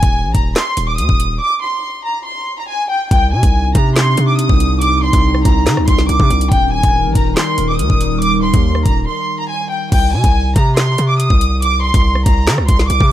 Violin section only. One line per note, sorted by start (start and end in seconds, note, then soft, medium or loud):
0.00 0.32 G#5 loud
0.35 0.51 A#5 medium
0.56 0.86 C6 medium
0.88 0.96 D6 medium
0.98 1.38 D#6 medium
1.40 1.57 D6 loud
1.62 2.02 C6 medium
2.05 2.21 A#5 medium
2.26 2.56 C6 medium
2.58 2.66 A#5 medium
2.69 2.85 G#5 medium
2.90 3.06 G5 medium
3.11 3.28 G5 loud
3.33 3.73 G#5 medium
3.75 3.91 A#5 medium
3.96 4.26 C6 medium
4.28 4.36 D6 medium
4.39 4.79 D#6 medium
4.82 4.98 D6 loud
5.02 5.42 C6 loud
5.45 5.85 A#5 medium
5.88 6.04 C6 medium
6.09 6.49 D6 medium
6.51 6.68 G5 loud
6.73 7.13 G#5 loud
7.15 7.32 A#5 medium
7.37 7.67 C6 medium
7.69 7.77 D6 medium
7.79 8.19 D#6 medium
8.21 8.38 D6 loud
8.43 8.83 C6 loud
8.86 9.02 A#5 medium
9.07 9.37 C6 medium
9.39 9.47 A#5 medium
9.50 9.66 G#5 medium
9.71 9.87 G5 medium
9.92 10.08 G5 loud
10.13 10.53 G#5 medium
10.56 10.72 A#5 medium
10.77 11.07 C6 medium
11.09 11.17 D6 medium
11.19 11.60 D#6 medium
11.63 11.79 D6 loud
11.83 12.23 C6 loud
12.26 12.66 A#5 medium
12.69 12.85 C6 loud
12.90 13.12 D6 loud